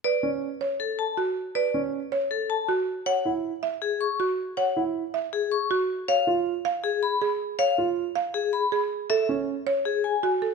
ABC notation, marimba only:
X:1
M:4/4
L:1/8
Q:1/4=159
K:Bdor
V:1 name="Marimba"
B z2 c z2 F z | B z2 c z2 F z | c z2 e z2 F z | c z2 e z2 F z |
c z2 ^e z2 G z | c z2 ^e z2 G z | A z2 c z2 F A |]